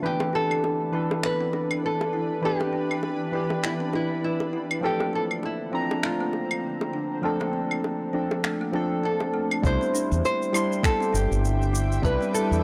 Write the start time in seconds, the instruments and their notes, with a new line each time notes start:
0.02 synth keys E3 D4 G4 B4, ambient pad E3 D4 B4, kalimba B3, nylon-string guitar G4
0.20 kalimba C4, high bongo
0.33 kalimba D4, nylon-string guitar A4
0.51 claves
0.64 high bongo
0.92 synth keys E3 D4 A4 B4, kalimba E4
1.11 high bongo
1.23 kalimba B3, nylon-string guitar B4, finger snap
1.41 kalimba C4
1.53 kalimba D4, high bongo
1.71 claves
1.86 nylon-string guitar A4
2.01 high bongo
2.13 kalimba E4
2.42 synth keys E3 D4 G4 B4, kalimba B3, nylon-string guitar G4
2.60 kalimba C4, high bongo
2.73 kalimba D4
2.91 claves
3.03 high bongo
3.32 synth keys E3 D4 G4 B4, kalimba E4
3.50 high bongo
3.63 kalimba B3, nylon-string guitar E4, finger snap
3.80 kalimba C4
3.93 kalimba D4, nylon-string guitar E4, high bongo
4.24 nylon-string guitar E4
4.40 high bongo
4.53 kalimba E4
4.71 claves
4.81 ambient pad D3 C4, synth keys F3 C4 D4 A4, kalimba A3
4.85 nylon-string guitar G4
5.00 kalimba A#3, high bongo
5.13 kalimba C4, nylon-string guitar A4
5.31 claves
5.43 nylon-string guitar E4, high bongo
5.71 synth keys F3 C4 D4 A#5, kalimba D4
5.91 high bongo
6.03 kalimba A3, nylon-string guitar F4, finger snap
6.20 kalimba A#3
6.33 kalimba C4, high bongo
6.51 claves
6.81 high bongo
6.93 kalimba D4
7.22 synth keys F3 C4 D4 A4, kalimba A3, ambient pad D4
7.40 kalimba A#3, high bongo
7.53 kalimba C4
7.71 claves
7.84 high bongo
8.13 synth keys F3 C4 D4 A4, kalimba D4
8.31 high bongo
8.43 kalimba A3, finger snap
8.61 kalimba A#3
8.72 synth keys F3 C4 D4 A4, kalimba D4, high bongo
9.03 kalimba C4, nylon-string guitar A4
9.20 kalimba C4, high bongo
9.34 kalimba A3
9.51 claves
9.62 fretless electric bass C2, synth keys G3 D4 E4 C5, kalimba B3, nylon-string guitar C5, ambient pad E5 G5 D6, kick, shaker
9.81 kalimba C4, shaker
9.94 kalimba D4, shaker
10.12 fretless electric bass E2, shaker
10.25 nylon-string guitar C5, shaker
10.42 shaker
10.53 synth keys G3 D4 E4 C6, kalimba E4, claves, shaker
10.72 shaker
10.83 kalimba B3, nylon-string guitar A4, finger snap, kick, shaker
11.00 kalimba C4, shaker
11.13 fretless electric bass G1, kalimba D4, nylon-string guitar G4, shaker
11.31 fretless electric bass G1, shaker
11.45 shaker
11.62 shaker
11.73 kalimba E4, shaker
11.92 shaker
12.02 fretless electric bass C2, synth keys G3 D4 E4 B4, kalimba B3, nylon-string guitar B4, kick, shaker
12.21 kalimba C4, shaker
12.33 kalimba D4, nylon-string guitar A4, shaker
12.51 fretless electric bass E2, shaker